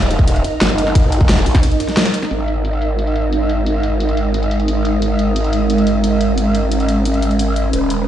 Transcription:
0.00 0.43 D#1 loud
0.00 2.27 D#4 medium
0.00 2.27 A#4 medium
0.00 2.27 D#5 medium
0.00 closed hi-hat soft
0.00 ride soft
0.11 closed hi-hat medium
0.11 ride medium
0.19 kick loud
0.28 closed hi-hat medium
0.28 ride medium
0.36 closed hi-hat soft
0.44 closed hi-hat medium
0.44 ride medium
0.61 1.20 G1 medium
0.61 snare loud
0.61 closed hi-hat medium
0.61 ride medium
0.70 snare soft
0.70 ride soft
0.78 closed hi-hat medium
0.78 ride medium
0.87 snare soft
0.95 kick loud
0.95 closed hi-hat loud
0.95 ride medium
1.12 closed hi-hat medium
1.12 ride medium
1.20 1.45 F#1 medium
1.20 kick loud
1.29 snare loud
1.29 closed hi-hat loud
1.29 ride medium
1.38 snare medium
1.38 closed hi-hat soft
1.46 1.62 A#1 loud
1.46 closed hi-hat medium
1.46 open hi-hat medium
1.55 kick loud
1.55 snare medium
1.55 ride soft
1.63 closed hi-hat medium
1.63 ride medium
1.72 closed hi-hat soft
1.80 snare soft
1.80 closed hi-hat medium
1.80 ride medium
1.89 snare soft
1.89 closed hi-hat soft
1.89 ride soft
1.97 snare loud
1.97 closed hi-hat loud
1.97 ride medium
2.05 snare loud
2.05 ride medium
2.14 closed hi-hat medium
2.14 ride medium
2.22 snare soft
2.31 7.72 G#1 medium
2.31 7.69 G#3 medium
2.31 4.99 D#4 medium
2.31 7.69 A#4 medium
2.31 closed hi-hat loud
2.48 closed hi-hat medium
2.65 closed hi-hat medium
2.73 closed hi-hat soft
2.82 closed hi-hat medium
2.99 closed hi-hat medium
3.07 closed hi-hat soft
3.16 closed hi-hat medium
3.33 closed hi-hat medium
3.49 closed hi-hat medium
3.66 closed hi-hat medium
3.83 closed hi-hat medium
4.00 closed hi-hat medium
4.09 closed hi-hat soft
4.17 closed hi-hat medium
4.34 closed hi-hat medium
4.43 closed hi-hat soft
4.51 closed hi-hat medium
4.60 closed hi-hat soft
4.68 closed hi-hat medium
4.85 closed hi-hat medium
5.02 7.71 C#4 medium
5.02 closed hi-hat medium
5.19 closed hi-hat medium
5.36 closed hi-hat medium
5.44 closed hi-hat soft
5.53 closed hi-hat medium
5.70 closed hi-hat medium
5.78 closed hi-hat soft
5.87 closed hi-hat medium
6.04 closed hi-hat medium
6.21 closed hi-hat medium
6.38 closed hi-hat medium
6.55 closed hi-hat medium
6.72 closed hi-hat medium
6.80 closed hi-hat soft
6.89 closed hi-hat medium
7.05 closed hi-hat medium
7.14 closed hi-hat soft
7.22 closed hi-hat medium
7.31 closed hi-hat soft
7.39 closed hi-hat medium
7.56 closed hi-hat medium
7.73 8.08 D#1 medium
7.73 closed hi-hat medium
7.90 closed hi-hat medium

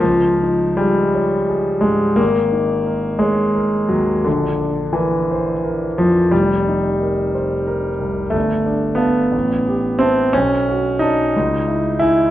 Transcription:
0.00 2.15 C#2 soft
0.00 0.78 F3 medium
0.42 1.01 D#4 soft
0.77 1.83 G3 medium
0.77 1.35 G#4 soft
1.14 1.70 C#5 soft
1.49 2.05 G#4 soft
1.81 2.19 G#2 soft
1.81 2.18 G#3 medium
2.16 4.21 G#1 soft
2.16 3.19 A#3 medium
2.52 3.06 D#4 soft
2.86 3.41 A#4 soft
3.19 3.89 G#3 medium
3.19 3.76 C#5 soft
3.55 4.12 A#4 soft
3.89 4.26 D#2 soft
3.89 4.25 F#3 medium
4.24 6.29 A#1 soft
4.24 4.95 D3 medium
4.61 5.17 D4 soft
4.93 5.97 E3 medium
4.93 5.51 A#4 soft
5.31 5.86 C5 soft
5.64 6.19 A#4 soft
5.98 6.33 F2 soft
5.98 6.33 F3 medium
6.31 8.31 F1 soft
6.31 7.34 G3 medium
6.68 7.22 D#4 soft
7.02 7.54 A#4 soft
7.34 7.88 C5 soft
7.67 8.21 A#4 soft
8.00 8.34 C2 soft
8.30 9.30 G1 soft
8.30 8.98 A3 medium
8.66 9.20 D4 soft
8.95 10.00 B3 medium
8.95 9.29 F5 soft
8.95 9.29 A5 soft
9.32 10.31 A1 soft
9.67 10.22 G4 soft
9.99 10.34 C4 medium
9.99 10.31 E5 soft
9.99 10.32 A5 soft
10.33 11.32 B1 soft
10.33 11.00 C#4 medium
10.69 11.22 F#4 soft
10.99 12.01 D#4 medium
10.99 11.32 D5 soft
10.99 11.32 A5 soft
11.36 12.31 C#2 soft
11.68 11.98 E4 soft
11.99 12.31 E4 medium
11.99 12.31 D#5 soft
11.99 12.31 G#5 soft

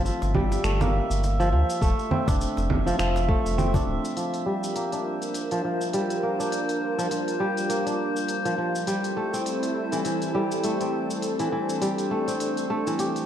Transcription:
0.00 0.64 A3 medium
0.00 1.14 C4 medium
0.00 4.19 E5 medium
0.05 1.39 F3 medium
0.05 shaker medium
0.22 0.57 G1 medium
0.22 cajon slap medium
0.22 shaker soft
0.34 1.87 G3 loud
0.34 kick medium
0.34 low conga medium
0.52 cajon slap medium
0.52 shaker medium
0.64 1.01 G1 medium
0.64 0.87 A3 medium
0.64 finger snap medium
0.64 shaker medium
0.81 1.88 A#3 medium
0.81 cajon slap medium
0.81 low conga medium
0.81 shaker soft
1.10 1.54 G1 medium
1.10 shaker medium
1.24 cajon slap medium
1.24 shaker soft
1.40 1.51 F3 loud
1.40 shaker soft
1.52 1.63 D2 medium
1.52 1.87 F3 medium
1.70 shaker medium
1.82 1.92 F1 loud
1.82 3.28 A3 loud
1.82 kick loud
1.82 shaker medium
1.99 shaker soft
2.11 3.58 C4 medium
2.11 low conga medium
2.28 2.45 F1 loud
2.28 3.74 D4 medium
2.28 cajon bass medium
2.28 kick loud
2.28 cajon slap medium
2.28 shaker medium
2.41 shaker medium
2.57 2.92 F1 medium
2.57 cajon slap medium
2.57 shaker soft
2.70 kick medium
2.70 low conga medium
2.86 2.98 F3 medium
2.86 shaker medium
2.99 3.36 F1 medium
2.99 4.15 F3 medium
2.99 finger snap medium
2.99 shaker medium
3.16 cajon slap medium
3.16 shaker soft
3.28 4.82 A3 loud
3.28 kick loud
3.46 3.80 F1 medium
3.46 shaker medium
3.58 5.38 C4 medium
3.58 low conga medium
3.58 shaker medium
3.74 4.92 D4 medium
3.74 cajon bass medium
3.74 kick medium
3.74 shaker soft
3.87 3.98 D1 medium
4.05 shaker medium
4.17 5.50 F3 medium
4.17 13.26 G3 medium
4.17 8.84 D4 medium
4.17 8.84 F4 medium
4.17 8.84 A#4 medium
4.17 13.26 C5 medium
4.17 open hi-hat medium
4.17 shaker soft
4.34 open hi-hat soft
4.34 shaker soft
4.46 5.93 G3 medium
4.63 shaker medium
4.76 6.23 A#3 medium
4.76 open hi-hat medium
4.76 shaker soft
4.92 6.39 D4 medium
4.92 open hi-hat soft
4.92 shaker soft
5.22 open hi-hat soft
5.22 shaker medium
5.34 open hi-hat medium
5.34 shaker soft
5.51 5.63 F3 medium
5.51 open hi-hat soft
5.51 shaker soft
5.64 6.97 F3 medium
5.81 shaker medium
5.93 7.39 G3 medium
5.93 open hi-hat medium
5.93 shaker soft
6.10 open hi-hat soft
6.10 shaker soft
6.23 7.69 A#3 medium
6.40 7.86 D4 medium
6.40 shaker medium
6.52 open hi-hat medium
6.52 shaker medium
6.69 open hi-hat soft
6.69 shaker soft
6.98 7.09 F3 medium
6.98 shaker medium
7.11 8.44 F3 medium
7.11 open hi-hat medium
7.11 shaker soft
7.28 open hi-hat soft
7.28 shaker soft
7.40 8.86 G3 medium
7.57 open hi-hat soft
7.57 shaker medium
7.70 9.23 A#3 medium
7.70 open hi-hat medium
7.70 shaker medium
7.86 9.54 D4 medium
7.86 open hi-hat soft
7.86 shaker soft
8.16 shaker medium
8.28 open hi-hat medium
8.28 shaker soft
8.45 8.57 F3 medium
8.45 open hi-hat soft
8.45 shaker soft
8.58 8.93 F3 medium
8.75 shaker medium
8.87 10.34 G3 medium
8.87 13.26 C4 medium
8.87 11.21 E4 medium
8.87 13.26 A4 medium
8.87 open hi-hat medium
8.87 shaker soft
9.04 open hi-hat soft
9.04 shaker soft
9.17 10.64 A3 medium
9.34 10.81 C4 medium
9.34 shaker medium
9.46 open hi-hat medium
9.46 shaker medium
9.63 open hi-hat soft
9.63 shaker soft
9.92 10.04 E3 medium
9.92 open hi-hat soft
9.92 shaker medium
10.05 11.38 E3 medium
10.05 open hi-hat medium
10.05 shaker medium
10.22 open hi-hat soft
10.22 shaker soft
10.35 11.80 G3 medium
10.51 shaker medium
10.64 12.11 A3 medium
10.64 open hi-hat medium
10.64 shaker soft
10.81 12.27 C4 medium
10.81 open hi-hat soft
10.81 shaker soft
11.10 shaker medium
11.22 13.26 D4 medium
11.22 open hi-hat medium
11.22 shaker medium
11.39 11.51 E3 medium
11.39 open hi-hat soft
11.39 shaker soft
11.52 12.86 E3 medium
11.69 shaker medium
11.82 13.26 G3 medium
11.82 open hi-hat medium
11.82 shaker medium
11.98 open hi-hat soft
11.98 shaker soft
12.11 12.70 A3 medium
12.28 13.26 C4 medium
12.28 open hi-hat soft
12.28 shaker medium
12.40 open hi-hat medium
12.40 shaker medium
12.57 open hi-hat soft
12.57 shaker soft
12.70 13.26 A3 medium
12.87 13.26 E3 medium
12.87 shaker medium
12.99 13.26 G4 medium
12.99 open hi-hat medium
12.99 shaker medium
13.16 open hi-hat soft
13.16 shaker soft

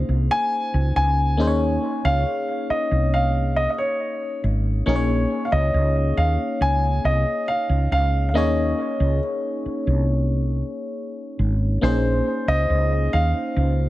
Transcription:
0.00 1.35 A#3 medium
0.00 1.35 C#4 medium
0.00 1.35 D#4 medium
0.00 1.36 G#4 medium
0.00 1.36 C5 medium
0.00 0.34 F5 medium
0.09 0.27 C2 medium
0.31 0.92 G#5 loud
0.74 0.93 C#2 medium
0.96 1.39 C#2 medium
0.96 2.08 G#5 loud
1.37 1.76 D#2 loud
1.37 4.82 A#3 medium
1.37 4.83 C#4 medium
1.37 4.83 D#4 medium
1.37 4.83 G#4 medium
1.37 1.47 C5 medium
1.47 4.87 C#5 medium
2.05 2.23 C#2 medium
2.05 2.66 F5 loud
2.70 3.15 D#5 medium
2.70 muted fretless electric bass stroke soft
2.91 3.66 C2 medium
3.14 3.58 F5 medium
3.56 3.69 D#5 medium
3.78 4.40 C#5 medium
4.44 4.81 G#1 medium
4.86 5.24 A#1 loud
4.86 8.30 A#3 medium
4.86 8.31 C#4 medium
4.86 8.31 D#4 medium
4.86 8.32 G#4 medium
4.86 4.95 A#4 medium
4.86 5.47 C#5 medium
4.96 8.35 C#5 medium
5.45 5.52 F5 medium
5.52 5.71 C#2 medium
5.52 6.19 D#5 medium
5.74 6.11 C#2 medium
6.17 6.36 D#2 medium
6.17 6.62 F5 medium
6.61 6.98 C#2 medium
6.61 7.06 G#5 loud
7.04 7.23 C2 medium
7.04 7.45 D#5 medium
7.48 7.88 F5 medium
7.69 7.88 C#2 medium
7.91 8.35 C#2 medium
7.91 8.27 F5 medium
8.29 8.35 F5 medium
8.34 8.72 D#2 loud
8.34 11.78 A#3 medium
8.34 11.79 C#4 medium
8.34 11.79 D#4 medium
8.34 11.80 G#4 medium
8.34 11.80 C#5 medium
8.34 9.18 D#5 medium
9.00 9.19 C#2 medium
9.66 muted fretless electric bass stroke soft
9.87 10.61 C2 medium
11.39 11.76 G#1 medium
11.81 12.20 A#1 loud
11.81 13.89 A#3 medium
11.81 13.89 C#4 medium
11.81 13.89 D#4 medium
11.81 13.89 G#4 medium
11.81 12.50 C5 medium
11.81 13.89 C5 medium
12.48 12.66 C#2 medium
12.48 13.15 D#5 loud
12.70 13.07 C#2 medium
13.13 13.32 D#2 medium
13.13 13.89 F5 medium
13.56 13.89 C#2 medium

